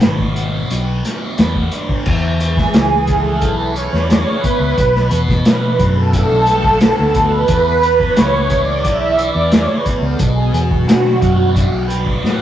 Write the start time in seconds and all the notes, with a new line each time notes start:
Already playing: B2 B3 D4
0.00 G#1 B4, snare, closed hi-hat
0.19 kick
0.35 F#4, closed hi-hat
0.70 B1 B3, closed hi-hat
1.04 D4, snare, closed hi-hat
1.38 E2 B4, snare, closed hi-hat
1.55 kick
1.71 D4, closed hi-hat
1.89 kick
2.06 E2 E3, kick, crash
2.40 G#4 B4, closed hi-hat
2.57 kick, snare
2.74 C#2 E4, snare, closed hi-hat
3.07 G#4, kick, closed hi-hat
3.41 B1 E4, kick, closed hi-hat
3.75 B4, closed hi-hat
3.93 E2, snare
4.09 G#4, snare, closed hi-hat
4.30 B4
4.44 B3, kick, closed hi-hat
4.60 C#2
4.76 B1 B2, kick, closed hi-hat
4.96 snare
5.10 E2 B4, closed hi-hat
5.28 kick, snare
5.45 D4, snare, closed hi-hat
5.79 F#2 F#4 A4, kick, closed hi-hat
6.13 D4, kick, closed hi-hat
6.32 B1
6.46 B4, closed hi-hat
6.64 kick
6.80 F#4, snare, closed hi-hat
6.99 D2
7.14 B3 B4, kick, closed hi-hat
7.48 E2 E3, kick, closed hi-hat
7.81 B4, closed hi-hat
8.00 C#5, kick
8.16 C#2 E4, snare, closed hi-hat
8.49 G#4, kick, closed hi-hat
8.85 B1 E4, kick, closed hi-hat
9.17 B4, closed hi-hat
9.35 E2
9.52 G#4, snare, closed hi-hat
9.86 B3, kick, closed hi-hat
10.01 C#2
10.19 B1 B2, kick, closed hi-hat
10.53 E2 B4, closed hi-hat
10.58 F#4
10.71 kick
10.87 D4, snare, closed hi-hat
11.21 F#2 F#4, kick, closed hi-hat
11.54 D4, kick, closed hi-hat
11.72 B1
11.88 B4, closed hi-hat
12.07 kick
12.22 A2 F#4, snare